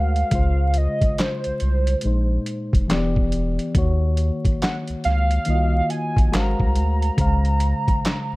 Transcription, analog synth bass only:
0.00 0.24 D2 medium
0.32 0.88 C#2 loud
1.46 1.52 C2 soft
1.62 1.95 C2 loud
2.05 2.39 A#1 loud
2.74 2.86 F1 medium
2.91 3.58 E1 loud
3.76 4.31 D#2 loud
4.90 4.95 C#2 soft
5.06 5.39 C#2 loud
5.48 5.81 C2 medium
6.18 6.30 A#1 medium
6.34 6.55 G#1 medium
6.60 6.79 C2 medium
6.77 7.10 D2 medium
7.19 7.74 C#2 loud
8.33 8.36 C2 medium

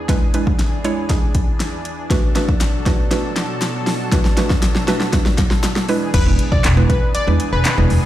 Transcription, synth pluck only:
0.09 0.28 G#3 loud
0.09 0.28 D4 medium
0.09 0.28 E4 medium
0.09 0.28 B4 loud
0.34 0.72 G#3 medium
0.34 0.72 D4 medium
0.34 0.72 E4 medium
0.34 0.72 B4 loud
0.84 1.03 G#3 medium
0.84 1.03 D4 medium
0.84 1.03 E4 medium
0.84 1.04 C#5 loud
1.10 1.85 G#3 medium
1.10 1.85 D4 medium
1.10 1.85 E4 medium
1.10 1.85 G#4 loud
2.10 2.29 A3 loud
2.10 2.29 D4 loud
2.10 2.30 F#4 medium
2.10 2.30 B4 loud
2.35 2.73 A3 medium
2.35 2.73 D4 medium
2.35 2.73 F#4 medium
2.35 2.74 B4 loud
2.86 3.05 A3 loud
2.86 3.05 D4 medium
2.86 3.05 F#4 medium
2.86 3.05 B4 loud
3.11 3.87 A3 medium
3.11 3.87 D4 medium
3.11 3.87 F#4 medium
3.11 3.87 B4 medium
4.12 4.31 A3 loud
4.12 4.31 D4 medium
4.12 4.31 F#4 medium
4.12 4.31 B4 loud
4.37 4.75 A3 medium
4.37 4.75 D4 medium
4.37 4.75 F#4 medium
4.37 4.75 B4 loud
4.88 5.07 A3 loud
4.88 5.07 D4 medium
4.88 5.07 F#4 medium
4.88 5.07 B4 loud
5.13 5.88 A3 medium
5.13 5.88 D4 medium
5.13 5.89 F#4 medium
5.13 5.88 B4 medium
5.89 6.09 G#3 medium
5.89 6.09 D4 medium
5.89 6.09 E4 medium
5.89 6.09 B4 loud
6.26 6.64 G#3 medium
6.26 6.64 B3 medium
6.26 6.64 D4 medium
6.26 6.64 E4 medium
6.26 6.65 B4 medium
6.77 7.15 G#3 medium
6.77 7.15 B3 medium
6.77 7.15 D4 medium
6.77 7.15 E4 medium
6.77 7.15 B4 loud
7.27 7.65 G#3 medium
7.27 7.65 B3 medium
7.27 7.65 D4 medium
7.27 7.65 E4 medium
7.27 7.65 B4 medium
7.78 8.05 G#3 medium
7.78 8.05 B3 medium
7.78 8.05 D4 medium
7.78 8.05 E4 medium
7.78 8.05 B4 medium

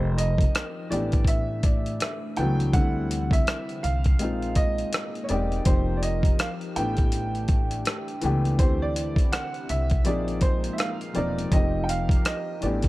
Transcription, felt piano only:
0.00 0.90 F3 medium
0.00 0.94 A#3 medium
0.00 0.91 C4 medium
0.00 0.92 D#4 medium
0.00 0.92 G4 medium
0.90 2.24 E3 medium
0.90 2.24 A3 medium
0.90 2.25 B3 medium
0.90 2.25 D4 medium
0.90 2.26 G4 medium
1.65 1.98 D5 medium
2.01 2.35 E5 medium
2.37 2.70 E3 medium
2.37 2.71 A3 medium
2.37 2.71 B3 medium
2.37 2.72 D4 medium
2.37 2.72 F#5 medium
2.41 2.73 F#3 loud
2.73 4.07 G3 medium
2.73 4.07 A3 medium
2.73 4.08 C4 medium
2.73 4.08 D4 medium
2.77 4.09 E4 loud
4.19 5.20 G#3 medium
4.19 5.20 A#3 medium
4.19 5.21 C4 medium
4.19 5.21 D#4 medium
4.23 5.22 F4 medium
5.29 5.63 G#3 medium
5.29 5.63 A#3 medium
5.29 5.64 C4 medium
5.29 5.64 D#4 medium
5.33 5.65 G4 medium
5.65 6.76 F3 medium
5.65 6.76 A#3 medium
5.65 6.77 C4 medium
5.65 6.77 D#4 medium
5.69 6.78 G4 medium
6.76 8.09 E3 medium
6.76 8.10 A3 medium
6.76 8.10 B3 medium
6.76 8.11 D4 medium
6.80 8.11 G4 medium
8.21 8.55 E3 medium
8.21 8.56 A3 medium
8.21 8.56 B3 medium
8.21 8.57 D4 medium
8.26 8.57 G4 loud
8.58 9.92 E3 medium
8.58 9.93 A3 medium
8.58 9.93 C4 medium
8.58 9.94 D4 medium
8.62 9.94 G4 medium
10.04 11.05 F3 medium
10.04 11.06 A#3 medium
10.04 11.06 C4 medium
10.04 11.07 D#4 medium
10.08 11.07 G#4 medium
11.13 11.48 F3 medium
11.13 11.48 A#3 medium
11.13 11.49 C4 medium
11.13 11.49 D#4 medium
11.13 11.50 A#4 medium
11.51 12.61 F3 medium
11.51 11.60 A3 medium
11.51 12.62 C4 medium
11.51 12.63 D#4 medium
11.51 12.63 G4 medium
11.59 12.65 A#3 medium
12.61 12.88 E3 medium
12.61 12.88 A3 medium
12.61 12.88 B3 medium
12.61 12.88 D4 medium
12.65 12.88 G4 medium

